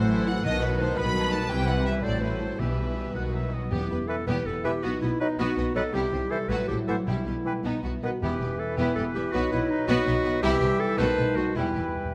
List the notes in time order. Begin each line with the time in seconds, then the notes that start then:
Already playing: A1 A2 E3 E4 F#4 A4 C5 F#5
0.08 E3 F#3 E4 A4
0.26 F#3 C4 E4 F#4 C5 F#5
0.43 B1 B2 D#3 D#4 A4 B4 D#5
0.61 F#3 B3 D#4 F#4 B4
0.78 D#3 A3 D#4 A4 B4 C5
0.96 B1 B2 F#3 G3 B3 F#4 B4 B5
1.14 D#3 A3 D#4 A4 B4
1.31 F#3 A3 B3 D#4 F#4 B4 A5
1.49 C2 C3 E3 G3 C4 E4 G4 B4 G5
1.66 E3 G3 C4 E4 C5 F#5
1.84 G3 C4 E4 G4 E5
2.02 A1 A2 F#3 A3 C4 E4 A4 C5 D5
2.20 E3 A3 C4 E4 B4 C5
2.39 A3 C4 E4 A4 C5
2.57 B1 B2 E3 G3 B3 G4 B4 E5
2.76 E3 G3 E4 B4
2.95 G3 B3 E4 G4
3.14 B1 B2 D#3 B3 F#4 F#5
3.32 F#3 D#4 B4 E5
3.52 D#3 F#3 B3 D#4 F#4 D#5
3.71 E1 E2 E3 B3 E4 G4
3.90 E1 E2 B3 B4
4.08 E3 E4 A4 B4 E5
4.27 E1 E2 B3 E4 G4 B4
4.46 E1 E2 B3 G4 A4 B4
4.63 E1 E2 E3 B3 E4 G4 B4 E5
4.82 B1 B2 B3 D#4 F#4 B4
5.01 B1 B2 B3 E4 B4 D#5
5.19 F#3 D#4 B4 D#5
5.38 B1 B2 B3 D#4 F#4 B4
5.56 B1 B2 B3 F#4 B4 D#5
5.75 B1 B2 F#3 B3 D#4 A4 B4 D#5 F#5
5.93 C2 C3 G3 E4 G4
6.11 C2 C3 G3 G4 C5
6.30 E3 E4 A4 C5 E5
6.49 A1 A2 F#3 E4 F#4 A4 B4
6.68 A1 A2 F#3 G4 A4 C5
6.87 A1 A2 E3 F#3 E4 A4 C5 E5 F#5
7.05 B1 B2 G3 E4 G4
7.25 B1 B2 G3 G4 B4
7.36 A3
7.45 E3 E4 B4 G5
7.64 B1 B2 B3 D#4 F#4
7.83 B1 B2 B3 E4 F#4 B4
8.02 B1 B2 D#3 B3 D#4 F#4 B4 D#5 F#5
8.21 E1 E2 E3 B3 E4 G4 B4 E5
8.40 E1 E2 B3 E4 G4 B4
8.59 A4 B4
8.77 E1 E2 B3 E4 G4 B4 E5
8.95 E1 E2 B3 G4 A4 B4
9.15 E1 E2 B3 E4 G4 B4 E5
9.32 B1 B2 F#3 B3 D#4 F#4 B4 D#5
9.52 B1 B2 B3 E4 B4 D#5
9.70 D#4
9.87 B1 B2 B3 D#4 F#4 B4
10.06 B1 B2 B3 D#4 B4 D#5
10.24 B1 B2 B3 D#5 F#5
10.42 C2 C3 E3 G3 E4 G4 E5 G5
10.60 C2 C3 G3 G4 C5
10.79 E4 A4 E5
10.97 B1 B2 D#3 A3 D#4 F#4 A4 B4 C5 A5
11.17 B1 B2 A3 A4 B4
11.36 B1 B2 A3 D#4 F#4 B4 C5 D#5
11.56 E1 E2 E3 G3 E4 G4 B4 G5
11.65 E2
11.73 E1 E2 G3 E4 G4
11.78 E2 B4
11.89 E2
11.96 E2 B4
12.05 E2